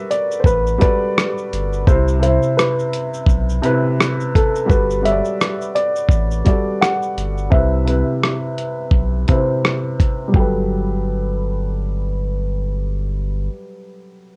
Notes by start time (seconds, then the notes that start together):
Already playing: G3 F#4 A4 A#4 B4 E5
0.11 D5, closed hi-hat, shaker
0.31 shaker
0.40 C5
0.44 A1 B4, kick, shaker
0.67 shaker
0.78 G3 F#4 A4 B4 D5, closed hi-hat, shaker
0.82 kick
1.18 cross-stick, shaker
1.38 shaker
1.53 G1, closed hi-hat, shaker
1.73 shaker
1.87 C2 C3 C4 E4 C5, kick, shaker
2.08 shaker
2.19 C3 C4 E4 C5 E5, closed hi-hat, shaker
2.43 shaker
2.57 B4, cross-stick, shaker
2.79 shaker
2.93 closed hi-hat, shaker
3.14 shaker
3.27 B1, kick, shaker
3.49 shaker
3.62 C3 C4 E4 B4, closed hi-hat, shaker
4.00 cross-stick, shaker
4.20 shaker
4.35 A4, kick, closed hi-hat, shaker
4.55 shaker
4.66 G3 F#4 A4 B4, kick
4.70 G1 B4, shaker
4.90 shaker
5.02 G3 F#4 A4 C#5 E5, closed hi-hat, shaker
5.11 D5
5.25 shaker
5.41 cross-stick, shaker
5.61 shaker
5.75 D5, closed hi-hat, shaker
5.96 shaker
6.09 A1, kick, shaker
6.31 shaker
6.44 G3 F#4 A4 D5, kick, closed hi-hat, shaker
6.81 F#5, cross-stick, shaker
7.02 shaker
7.17 G1, closed hi-hat, shaker
7.38 shaker
7.50 C2 C3 C4 E4 B4 E5, kick
7.85 C3 C4 E4 B4, closed hi-hat
8.23 cross-stick
8.58 closed hi-hat
8.91 B1, kick
9.28 C3 C4 E4 B4, kick, closed hi-hat
9.38 C5
9.65 cross-stick
10.00 kick, closed hi-hat
10.28 G3
10.32 G1 F#3 A4 G5, kick
10.40 B4